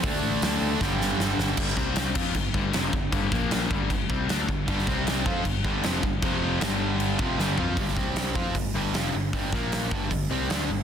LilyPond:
<<
  \new Staff \with { instrumentName = "Distorted electric guitar" } { \clef bass \time 4/4 \key g \minor \tempo 4 = 155 <d a d'>2 <g, d g>2 | r1 | r1 | <g, d g>8 <c g c'>4 <f c' f'>8 <g, d>8 <g, d g>8 <f, c f>8 <g, d>8 |
<f, c f>4 <g, d g>4. <f, c f>8 <g, d g>8 <f c' f'>8 | <g, d g>8 <c g c'>4 <f c' f'>8 <g, d>8 <g, d g>8 <f, c f>8 <g, d>8 | <g, d g>8 <bes, f bes>4 <g, d g>8 <g, d>8 <c g c'>8 <d a d'>8 <g, d>8 | }
  \new Staff \with { instrumentName = "Distorted electric guitar" } { \clef bass \time 4/4 \key g \minor <d a d'>2 <g, d g>2 | <g, d g>8 <c g c'>4 <f c' f'>8 <g, d>8 <g, d g>8 <f, c f>8 <g, d>8 | <g, d g>8 <bes, f bes>4 <g, d g>8 <g, d>8 <c g c'>8 <d a d'>8 <g, d>8 | <g, d g>8 <c g c'>4 <f c' f'>8 <g, d>8 <g, d g>8 <f, c f>8 <g, d>8 |
<f, c f>4 <g, d g>4. <f, c f>8 <g, d g>8 <f c' f'>8 | r1 | r1 | }
  \new Staff \with { instrumentName = "Overdriven electric guitar" } { \clef bass \time 4/4 \key g \minor <d a d'>2 <g, d g>2 | <g, d g>8 <c g c'>4 <f c' f'>8 <g, d>8 <g, d g>8 <f, c f>8 <g, d>8 | <g, d g>8 <bes, f bes>4 <g, d g>8 <g, d>8 <c g c'>8 <d a d'>8 <g, d>8 | <g, d g>8 <c g c'>4 <f c' f'>8 <g, d>8 <g, d g>8 <f, c f>8 <g, d>8 |
<f, c f>4 <g, d g>4. <f, c f>8 <g, d g>8 <f c' f'>8 | <g, d g>8 <c g c'>4 <f c' f'>8 <g, d>8 <g, d g>8 <f, c f>8 <g, d>8 | <g, d g>8 <bes, f bes>4 <g, d g>8 <g, d>8 <c g c'>8 <d a d'>8 <g, d>8 | }
  \new Staff \with { instrumentName = "Picked electric bass" } { \clef bass \time 4/4 \key g \minor d,8 a,,8 d,8 d,8 g,,8 g,,8 g,,8 g,,8 | g,,8 c,4 f,8 g,,8 g,,8 f,,8 g,,8 | g,,8 bes,,4 g,,8 g,,8 c,8 d,8 g,,8 | g,,8 c,4 f,8 g,,8 g,,8 f,,8 g,,8 |
r4 g,,4. f,,8 g,,8 f,8 | g,,8 c,4 f,8 g,,8 g,,8 f,,8 g,,8 | g,,8 bes,,4 g,,8 g,,8 c,8 d,8 g,,8 | }
  \new DrumStaff \with { instrumentName = "Drums" } \drummode { \time 4/4 <hho bd>4 <hho sn>4 <bd sn>8 sn8 sn8 sn8 | <cymc bd>16 sn16 <bd sn>8 <cymc sn>8 <cymc bd>8 <cymc bd>8 bd8 <cymc sn>8 bd8 | <cymc bd>8 <bd sn>8 <cymc sn>8 bd8 <cymc bd>8 bd8 <cymc sn>8 bd8 | <cymc bd>16 sn16 <bd sn>8 <cymc sn>8 bd8 <cymc bd>8 bd8 <cymc sn>8 bd8 |
<cymc bd>4 <cymc sn>4 cymc8 bd8 sn8 tomfh8 | <hho bd>16 sn16 <bd sn>8 <hho sn>8 bd8 <hho bd>4 <hho sn>4 | <hho bd>8 <bd sn>8 <hho sn>8 bd8 <hho bd>4 <hho sn>4 | }
>>